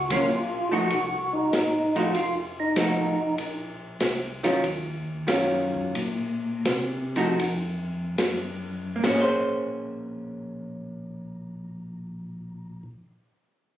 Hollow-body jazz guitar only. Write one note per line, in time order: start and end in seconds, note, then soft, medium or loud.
0.11 0.28 F#3 soft
0.11 0.29 A#3 medium
0.11 0.29 C#4 medium
0.11 0.29 F4 medium
0.71 0.89 F3 medium
0.71 0.89 A3 medium
0.71 0.90 D#4 medium
0.71 0.90 F#4 medium
1.95 2.13 F3 medium
1.95 2.13 A3 medium
1.95 2.13 D#4 medium
1.95 2.14 F#4 medium
2.76 3.15 F3 medium
2.76 3.15 A3 medium
2.76 3.15 D#4 medium
2.76 3.16 F#4 medium
4.43 4.62 D#3 medium
4.43 4.62 F#3 medium
4.43 4.62 C#4 medium
4.43 4.62 F4 medium
5.27 5.95 D#3 soft
5.27 5.95 F#3 medium
5.27 5.96 C#4 medium
5.27 5.96 F4 medium
7.16 7.37 F3 medium
7.16 7.38 A3 medium
7.16 7.38 D#4 medium
7.16 7.38 F#4 medium
8.96 12.80 A#3 medium
9.06 12.90 C#4 medium
9.14 12.98 G#4 medium
9.21 13.05 C5 medium